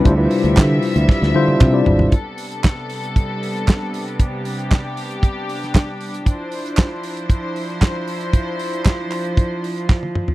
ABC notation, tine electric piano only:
X:1
M:4/4
L:1/16
Q:1/4=116
K:Ddor
V:1 name="Tine electric piano"
[G,DEFc] [G,DEFBc]4- [G,DEFBc] z4 [G,DEFc]2 z [G,DEFd]2 z | z16 | z16 | z16 |
z16 |]